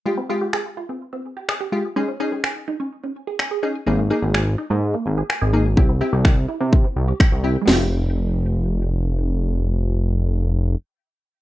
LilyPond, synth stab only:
\new Staff \with { instrumentName = "Synth stab" } { \time 4/4 \key f \minor \tempo 4 = 126 <aes f' g'>16 r16 <aes f' g'>4 r2 <aes f' g'>16 r16 | <des' ees' aes'>16 r16 <des' ees' aes'>4 r2 <des' ees' aes'>16 r16 | <bes ees' aes'>16 r16 <bes ees' aes'>4 r2 <bes ees' aes'>16 r16 | <c' e' g'>16 r16 <c' e' g'>4 r2 <c' e' g'>16 r16 |
<aes f' g'>1~ | <aes f' g'>1 | }